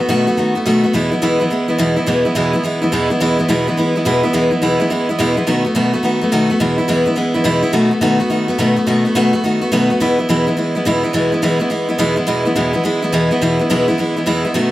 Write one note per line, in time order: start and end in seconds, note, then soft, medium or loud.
0.00 0.08 A3 medium
0.09 0.27 B2 medium
0.09 0.27 D#3 medium
0.09 0.27 A3 medium
0.09 0.27 B3 medium
0.09 0.26 F#4 loud
0.27 0.37 A3 medium
0.27 0.37 B3 medium
0.27 0.37 F#4 medium
0.37 0.56 D#3 medium
0.37 0.56 A3 medium
0.37 0.55 B3 medium
0.37 0.54 F#4 medium
0.55 0.65 A3 soft
0.55 0.66 B3 medium
0.55 0.66 F#4 medium
0.66 0.84 B2 medium
0.66 0.84 D#3 medium
0.66 0.84 A3 loud
0.66 0.83 B3 medium
0.66 0.82 F#4 loud
0.84 0.94 A3 soft
0.84 0.93 B3 medium
0.84 0.94 F#4 medium
0.93 1.12 E2 medium
0.93 1.12 B2 medium
0.93 1.12 E3 medium
0.93 1.12 G#3 medium
0.93 1.11 B3 medium
0.93 1.10 E4 medium
1.11 1.21 E3 soft
1.11 1.21 G#3 soft
1.11 1.22 B3 soft
1.11 1.22 E4 medium
1.22 1.40 E2 medium
1.22 1.40 B2 medium
1.22 1.41 E3 medium
1.22 1.40 G#3 medium
1.22 1.40 B3 loud
1.22 1.38 E4 medium
1.40 1.49 E3 medium
1.40 1.50 G#3 medium
1.40 1.50 B3 medium
1.40 1.50 E4 medium
1.50 1.69 E3 medium
1.50 1.68 G#3 medium
1.50 1.68 B3 medium
1.50 1.67 E4 medium
1.68 1.78 E3 soft
1.68 1.78 G#3 soft
1.68 1.78 B3 medium
1.68 1.79 E4 medium
1.78 1.97 E2 medium
1.78 1.97 B2 medium
1.78 1.97 E3 medium
1.78 1.96 G#3 medium
1.78 1.96 B3 loud
1.78 1.95 E4 medium
1.96 2.06 E3 soft
1.96 2.06 G#3 medium
1.96 2.07 B3 soft
1.96 2.07 E4 medium
2.06 2.25 E2 medium
2.06 2.25 B2 medium
2.06 2.26 E3 medium
2.06 2.25 G#3 medium
2.06 2.25 B3 medium
2.06 2.24 E4 medium
2.25 2.34 E3 soft
2.25 2.35 G#3 soft
2.25 2.35 B3 medium
2.25 2.35 E4 medium
2.35 2.54 E2 medium
2.35 2.54 B2 medium
2.35 2.54 E3 medium
2.35 2.53 G#3 loud
2.35 2.53 B3 loud
2.35 2.52 E4 loud
2.53 2.62 E3 medium
2.53 2.63 G#3 medium
2.53 2.64 B3 medium
2.53 2.64 E4 medium
2.64 2.82 E3 medium
2.64 2.82 G#3 medium
2.64 2.81 B3 medium
2.64 2.80 E4 medium
2.82 2.92 E3 soft
2.82 2.92 G#3 medium
2.82 2.92 B3 medium
2.82 2.92 E4 medium
2.92 3.10 E2 medium
2.92 3.11 B2 loud
2.92 3.11 E3 medium
2.92 3.10 G#3 medium
2.92 3.10 B3 medium
2.92 3.09 E4 loud
3.10 3.20 E3 soft
3.10 3.20 G#3 medium
3.10 3.20 B3 medium
3.10 3.21 E4 medium
3.20 3.39 E2 medium
3.20 3.39 B2 medium
3.20 3.39 E3 medium
3.20 3.38 G#3 loud
3.20 3.38 B3 medium
3.20 3.37 E4 loud
3.38 3.48 E3 medium
3.38 3.48 G#3 medium
3.38 3.49 B3 medium
3.38 3.49 E4 medium
3.48 3.67 E2 medium
3.48 3.67 B2 medium
3.48 3.67 E3 medium
3.48 3.67 G#3 medium
3.48 3.67 B3 loud
3.48 3.66 E4 medium
3.67 3.76 E3 medium
3.67 3.77 G#3 medium
3.67 3.77 B3 medium
3.67 3.77 E4 medium
3.77 3.95 E3 medium
3.77 3.96 G#3 medium
3.77 3.95 B3 medium
3.77 3.94 E4 medium
3.95 4.05 E3 soft
3.95 4.05 G#3 soft
3.95 4.05 B3 medium
3.95 4.06 E4 medium
4.05 4.24 E2 medium
4.05 4.24 B2 medium
4.05 4.24 E3 loud
4.05 4.24 G#3 loud
4.05 4.23 B3 loud
4.05 4.22 E4 loud
4.23 4.32 E3 soft
4.23 4.33 G#3 medium
4.23 4.33 B3 medium
4.23 4.33 E4 medium
4.33 4.52 E2 medium
4.33 4.52 B2 medium
4.33 4.52 E3 medium
4.33 4.51 G#3 loud
4.33 4.50 B3 medium
4.33 4.50 E4 medium
4.51 4.61 E3 soft
4.51 4.61 G#3 soft
4.51 4.62 B3 soft
4.51 4.62 E4 medium
4.62 4.80 E2 medium
4.62 4.80 B2 medium
4.62 4.80 E3 medium
4.62 4.80 G#3 medium
4.62 4.79 B3 loud
4.62 4.78 E4 loud
4.80 4.89 E3 medium
4.80 4.89 G#3 medium
4.80 4.90 B3 medium
4.80 4.90 E4 medium
4.90 5.08 E3 medium
4.90 5.09 G#3 medium
4.90 5.09 B3 medium
4.90 5.08 E4 medium
5.09 5.18 E3 soft
5.09 5.19 G#3 medium
5.09 5.19 B3 medium
5.09 5.19 E4 medium
5.19 5.37 E2 loud
5.19 5.37 B2 medium
5.19 5.37 E3 loud
5.19 5.37 G#3 medium
5.19 5.36 B3 loud
5.19 5.35 E4 loud
5.37 5.47 E3 medium
5.37 5.47 G#3 medium
5.37 5.46 B3 medium
5.37 5.47 E4 medium
5.47 5.65 B2 medium
5.47 5.65 D#3 medium
5.47 5.65 A3 medium
5.47 5.65 B3 medium
5.47 5.63 F#4 loud
5.65 5.74 A3 soft
5.65 5.75 B3 medium
5.65 5.75 F#4 medium
5.75 5.93 B2 medium
5.75 5.94 D#3 medium
5.75 5.94 A3 medium
5.75 5.93 B3 medium
5.75 5.92 F#4 loud
5.93 6.03 A3 soft
5.93 6.03 B3 medium
5.93 6.04 F#4 medium
6.03 6.21 D#3 medium
6.03 6.22 A3 medium
6.03 6.21 B3 medium
6.03 6.20 F#4 medium
6.21 6.31 A3 soft
6.21 6.32 B3 medium
6.21 6.32 F#4 medium
6.32 6.50 B2 medium
6.32 6.50 D#3 loud
6.32 6.51 A3 medium
6.32 6.50 B3 medium
6.32 6.48 F#4 loud
6.50 6.60 A3 soft
6.50 6.60 B3 medium
6.50 6.60 F#4 medium
6.60 6.78 E2 medium
6.60 6.78 B2 medium
6.60 6.78 E3 medium
6.60 6.78 G#3 medium
6.60 6.77 B3 medium
6.60 6.77 E4 medium
6.78 6.87 E3 soft
6.78 6.88 G#3 soft
6.78 6.88 B3 soft
6.78 6.88 E4 medium
6.88 7.06 E2 medium
6.88 7.07 B2 loud
6.88 7.06 E3 loud
6.88 7.06 G#3 medium
6.88 7.05 B3 loud
6.88 7.04 E4 loud
7.06 7.14 E3 medium
7.06 7.15 G#3 medium
7.06 7.16 B3 medium
7.06 7.16 E4 medium
7.16 7.35 E3 medium
7.16 7.34 G#3 medium
7.16 7.34 B3 medium
7.16 7.33 E4 medium
7.34 7.43 E3 medium
7.34 7.44 G#3 medium
7.34 7.44 B3 medium
7.34 7.44 E4 medium
7.44 7.63 E2 medium
7.44 7.63 B2 loud
7.44 7.63 E3 medium
7.44 7.63 G#3 loud
7.44 7.62 B3 loud
7.44 7.61 E4 loud
7.63 7.73 E3 medium
7.63 7.73 G#3 medium
7.63 7.72 B3 medium
7.63 7.73 E4 medium
7.73 7.91 B2 medium
7.73 7.91 D#3 medium
7.73 7.92 A3 loud
7.73 7.91 B3 medium
7.73 7.90 F#4 loud
7.91 8.01 A3 soft
7.91 8.01 B3 soft
7.91 8.02 F#4 medium
8.01 8.20 B2 medium
8.01 8.20 D#3 loud
8.01 8.20 A3 loud
8.01 8.19 B3 loud
8.01 8.18 F#4 loud
8.20 8.29 A3 medium
8.20 8.30 B3 medium
8.20 8.30 F#4 medium
8.30 8.48 D#3 medium
8.30 8.49 A3 medium
8.30 8.48 B3 medium
8.30 8.47 F#4 medium
8.48 8.58 A3 medium
8.48 8.58 B3 medium
8.48 8.59 F#4 medium
8.58 8.77 B2 medium
8.58 8.77 D#3 loud
8.58 8.77 A3 medium
8.58 8.76 B3 loud
8.58 8.75 F#4 loud
8.77 8.86 A3 soft
8.77 8.87 B3 medium
8.77 8.87 F#4 medium
8.87 9.05 B2 medium
8.87 9.05 D#3 medium
8.87 9.05 A3 medium
8.87 9.05 B3 medium
8.87 9.04 F#4 loud
9.05 9.14 A3 soft
9.05 9.15 B3 medium
9.05 9.15 F#4 medium
9.15 9.33 B2 medium
9.15 9.33 D#3 loud
9.15 9.34 A3 loud
9.15 9.33 B3 loud
9.15 9.32 F#4 loud
9.33 9.43 A3 medium
9.33 9.44 B3 medium
9.33 9.43 F#4 medium
9.44 9.62 D#3 medium
9.44 9.62 A3 medium
9.44 9.62 B3 medium
9.44 9.60 F#4 medium
9.61 9.71 A3 soft
9.61 9.72 B3 medium
9.61 9.72 F#4 medium
9.72 9.90 B2 medium
9.72 9.90 D#3 loud
9.72 9.91 A3 loud
9.72 9.90 B3 loud
9.72 9.89 F#4 loud
9.90 10.00 A3 medium
9.90 10.00 B3 medium
9.90 10.00 F#4 medium
10.00 10.18 E2 medium
10.00 10.19 B2 medium
10.00 10.19 E3 medium
10.00 10.18 G#3 medium
10.00 10.18 B3 loud
10.00 10.17 E4 medium
10.18 10.28 E3 soft
10.18 10.29 G#3 soft
10.18 10.29 B3 soft
10.18 10.29 E4 medium
10.29 10.47 E2 loud
10.29 10.47 B2 medium
10.29 10.47 E3 medium
10.29 10.47 G#3 loud
10.29 10.46 B3 loud
10.29 10.45 E4 loud
10.46 10.56 E3 medium
10.46 10.56 G#3 medium
10.46 10.57 B3 medium
10.46 10.57 E4 medium
10.57 10.75 E3 medium
10.57 10.75 G#3 medium
10.57 10.75 B3 medium
10.57 10.74 E4 medium
10.75 10.85 E3 soft
10.75 10.85 G#3 medium
10.75 10.85 B3 medium
10.75 10.85 E4 medium
10.85 11.04 E2 loud
10.85 11.04 B2 loud
10.85 11.04 E3 medium
10.85 11.03 G#3 medium
10.85 11.03 B3 loud
10.85 11.02 E4 loud
11.03 11.13 E3 medium
11.03 11.13 G#3 medium
11.03 11.13 B3 medium
11.03 11.14 E4 medium
11.13 11.32 E2 medium
11.13 11.32 B2 medium
11.13 11.32 E3 loud
11.13 11.32 G#3 medium
11.13 11.32 B3 medium
11.13 11.31 E4 medium
11.32 11.41 E3 soft
11.32 11.42 G#3 medium
11.32 11.42 B3 soft
11.32 11.42 E4 medium
11.42 11.60 E2 medium
11.42 11.61 B2 medium
11.42 11.60 E3 medium
11.42 11.59 G#3 loud
11.42 11.59 B3 loud
11.42 11.58 E4 loud
11.59 11.69 E3 medium
11.59 11.69 G#3 medium
11.59 11.70 B3 medium
11.59 11.70 E4 medium
11.70 11.89 E3 medium
11.70 11.89 G#3 medium
11.70 11.88 B3 medium
11.70 11.87 E4 medium
11.89 11.98 E3 soft
11.89 11.98 G#3 medium
11.89 11.98 B3 medium
11.89 11.98 E4 medium
11.98 12.17 E2 medium
11.98 12.17 B2 medium
11.98 12.17 E3 medium
11.98 12.16 G#3 loud
11.98 12.16 B3 loud
11.98 12.15 E4 loud
12.16 12.26 E3 soft
12.16 12.26 G#3 medium
12.16 12.27 B3 medium
12.16 12.27 E4 medium
12.27 12.45 E2 medium
12.27 12.45 B2 medium
12.27 12.46 E3 medium
12.27 12.46 G#3 medium
12.27 12.45 B3 loud
12.27 12.44 E4 medium
12.45 12.55 E3 soft
12.45 12.55 G#3 medium
12.45 12.55 B3 medium
12.45 12.56 E4 medium
12.55 12.74 E2 medium
12.55 12.74 B2 medium
12.55 12.74 E3 loud
12.55 12.73 G#3 medium
12.55 12.73 B3 medium
12.55 12.72 E4 medium
12.73 12.82 E3 medium
12.73 12.84 G#3 medium
12.73 12.84 B3 medium
12.73 12.84 E4 medium
12.84 13.02 E3 medium
12.84 13.03 G#3 medium
12.84 13.02 B3 medium
12.84 13.01 E4 medium
13.02 13.12 E3 soft
13.02 13.12 G#3 medium
13.02 13.12 B3 medium
13.02 13.13 E4 medium
13.12 13.31 E2 medium
13.12 13.31 B2 medium
13.12 13.31 E3 medium
13.12 13.31 G#3 loud
13.12 13.31 B3 loud
13.12 13.30 E4 loud
13.31 13.41 E3 medium
13.31 13.41 G#3 medium
13.31 13.42 B3 medium
13.31 13.41 E4 medium
13.41 13.60 E2 medium
13.41 13.60 B2 medium
13.41 13.60 E3 medium
13.41 13.60 G#3 medium
13.41 13.59 B3 loud
13.41 13.58 E4 loud
13.59 13.69 E3 soft
13.59 13.69 G#3 soft
13.59 13.70 B3 medium
13.59 13.70 E4 medium
13.70 13.88 E2 medium
13.70 13.88 B2 loud
13.70 13.88 E3 medium
13.70 13.88 G#3 loud
13.70 13.88 B3 loud
13.70 13.87 E4 loud
13.88 13.97 E3 medium
13.88 13.98 G#3 medium
13.88 13.98 B3 medium
13.88 13.98 E4 medium
13.98 14.16 E3 medium
13.98 14.17 G#3 medium
13.98 14.16 B3 medium
13.98 14.15 E4 medium
14.16 14.25 E3 medium
14.16 14.26 G#3 medium
14.16 14.26 B3 medium
14.16 14.26 E4 medium
14.26 14.45 E2 loud
14.26 14.45 B2 loud
14.26 14.45 E3 medium
14.26 14.45 G#3 medium
14.26 14.44 B3 loud
14.26 14.43 E4 loud
14.45 14.54 E3 soft
14.45 14.54 G#3 medium
14.45 14.54 B3 medium
14.45 14.55 E4 medium
14.54 14.71 B2 medium
14.54 14.71 D#3 loud
14.54 14.71 A3 medium
14.54 14.71 B3 medium
14.54 14.71 F#4 medium